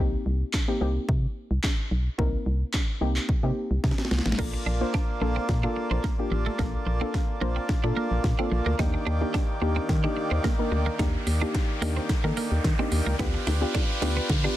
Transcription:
0.00 C2 A#3 C4 D#4 G4
0.26 C2
0.53 kick, snare, clap
0.68 A#3 C4 D#4 G4
0.81 C2 A#3 C4 D#4 G4
1.09 C3, kick
1.51 C2
1.64 kick, snare, clap
1.91 B1
2.18 C2 A#3 C4 D#4 A#4, kick
2.46 C2
2.73 kick, snare, clap
3.01 C2 A#3 C4 D#4 G4
3.16 clap
3.29 C3, kick
3.43 C3 A#3 C4 D#4 G4
3.71 C2
3.84 C3, kick, snare
3.91 snare
3.98 snare
4.05 snare
4.11 C2, snare
4.18 snare
4.26 A1, snare
4.32 snare
4.38 A#1 A#3 D4 F4 A4 D5 A5, kick, snare, crash, riser
4.54 muted clean electric guitar stroke
4.66 A#1 D4
4.81 A#3 D4 F4 C5
4.94 D4, kick, snare
5.21 A#1 A#3 D4 F4 A4, muted clean electric guitar stroke
5.36 C4
5.49 A#2, kick, snare
5.63 A#3 D4 F4 A4
5.76 muted clean electric guitar stroke
5.91 A#1 C4
6.04 A#3, kick, snare
6.19 A#3 D4 F4 G4
6.31 A1, muted clean electric guitar stroke
6.46 A3
6.59 A#1 A#3 D4 F4 A4, kick, snare
6.86 A#1, muted clean electric guitar stroke
7.01 A#3 C4 D4 F4 A4
7.14 muted clean electric guitar stroke, kick, snare
7.41 A#1 A#3 D4 F4 C5
7.56 C4
7.69 A#2, muted clean electric guitar stroke, kick, snare
7.83 A#2 A#3 D4 F4 A4
7.97 A#3
8.11 A#1
8.24 A#2, kick, snare
8.39 A#3 C4 D4 F4 A4
8.52 A#1, muted clean electric guitar stroke
8.66 D2 A#3
8.79 D#2 D#3 A#3 D4 D#4 G4 D5 G5, kick, snare
8.94 muted clean electric guitar stroke
9.07 D#2 D4
9.21 A#3 D4 D#4 G4
9.34 D4, kick, snare
9.62 D#2 A#3 D4 D#4 G4, muted clean electric guitar stroke
9.76 C4
9.89 D#3, kick, snare
10.04 A#3 D4 D#4 G4
10.17 muted clean electric guitar stroke
10.31 D#2 C4
10.44 A#3, kick, snare
10.59 A#3 D4 D#4 A#4
10.72 D2, muted clean electric guitar stroke
10.86 A#3
10.99 D#2 A#3 D4 D#4 G4 D5, kick, snare, closed hi-hat
11.27 D#2, muted clean electric guitar stroke, open hi-hat
11.42 A#3 D4 D#4 G4
11.55 muted clean electric guitar stroke, kick, snare, closed hi-hat
11.82 D#2 A#3 D4 D#4 G4, open hi-hat
11.97 C4
12.09 D#3, muted clean electric guitar stroke, kick, snare, closed hi-hat
12.24 D#3 A#3 D4 D#4 A4
12.37 A#3, open hi-hat
12.52 D#2
12.64 D#3, kick, snare, closed hi-hat
12.79 A#3 C4 D4 D#4 G4
12.92 D#2, muted clean electric guitar stroke, open hi-hat
13.07 C#2 A#3
13.19 D2 B3 D4 F4 G4 B4 D5 G5, kick, snare, closed hi-hat
13.34 muted clean electric guitar stroke
13.47 D2 D4, snare, open hi-hat
13.61 B3 D4 F4 G4
13.75 D4, kick, snare, closed hi-hat
14.02 D2 B3 D4 F4 G4, muted clean electric guitar stroke, snare, open hi-hat
14.17 B3
14.30 D3, kick, snare, closed hi-hat
14.44 B3 D4 F4 G4

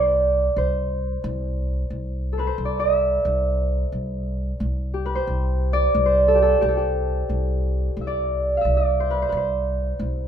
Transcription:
Already playing: C2 A4 C5 D5
0.56 C2 C5
1.24 C2
1.90 C2
2.33 A4
2.38 B4 C5
2.47 C5
2.58 C2
2.65 D5
2.79 E5
3.25 C2
3.92 C2
4.60 C2
4.94 G4
5.05 B4
5.15 C5
5.27 C2
5.73 D5
5.95 C2
6.06 C5
6.28 A4
6.35 G4
6.42 A4
6.61 C2 G4
6.68 A4
6.77 G4
7.29 C2
7.97 C2
8.01 E5
8.07 D5
8.57 F5
8.61 C2 E5
8.77 D5
9.00 C5
9.10 B4
9.22 C5
9.29 C2 B4
9.37 C5
9.99 C2

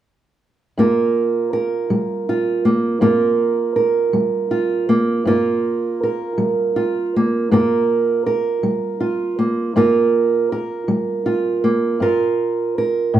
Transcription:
0.78 G2 A#3 F4 A#4
1.53 A#4
1.90 G3
2.29 F4
2.65 A#3
3.01 G2 A#3 F4 A#4
3.76 A#4
4.13 G3
4.51 F4
4.89 A#3
5.25 G2 A#3 F4 A#4
6.03 A#4
6.38 G3
6.76 F4
7.16 A#3
7.51 G2 A#3 F4 A#4
8.26 A#4
8.63 G3
9.00 F4
9.39 A#3
9.76 G2 A#3 F4 A#4
10.52 A#4
10.88 G3
11.26 F4
11.64 A#3
12.00 G2 F4 A#4
12.78 A#4
13.14 A2

